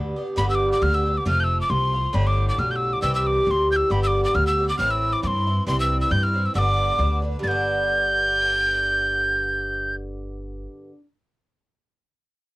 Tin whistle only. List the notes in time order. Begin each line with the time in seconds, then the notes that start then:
0.38 B5
0.50 E6
0.55 D6
0.72 D6
0.82 F6
0.94 E6
1.18 D6
1.28 F6
1.40 E6 G6
1.61 D6
1.70 C6
2.15 B5
2.27 D6
2.49 D6
2.59 F6
2.71 G6
2.76 E6
2.93 D6
3.02 E6
3.15 E6
3.27 D6
3.46 D6
3.51 C6
3.72 G6
3.76 E6
3.91 B5
4.03 E6
4.07 D6
4.24 D6
4.35 F6
4.47 E6
4.69 D6
4.79 F6
4.91 E6
5.13 D6
5.23 C6 D6
5.68 C6
5.80 E6
6.01 E6
6.11 G6
6.23 F6
6.46 E6
6.55 D6 E6
7.43 A6
7.48 G6